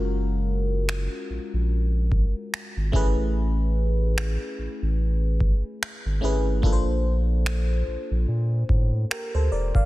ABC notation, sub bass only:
X:1
M:4/4
L:1/16
Q:"Swing 16ths" 1/4=73
K:Ador
V:1 name="Sub bass" clef=bass
F,,,6 ^A,,, A,,,4 z2 ^G,,, =A,,,2- | A,,,6 A,,, A,,,4 z2 ^G,,, G,,,2 | _B,,,6 B,,, B,,, _B,,2 A,,2 z D,, E,,, =F,,, |]